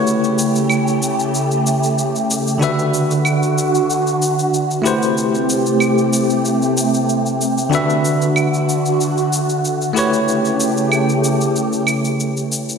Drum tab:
SH |xxxxxxxxxxxxxxxx|xxxxxxxxxxxxxxxx|xxxxxxxxxxxxxxxx|xxxxxxxxxxxxxxxx|
CL |----x-----------|----x-----------|----x-----------|----x-----------|

SH |xxxxxxxxxxxxxxxx|
CL |----x-----x-----|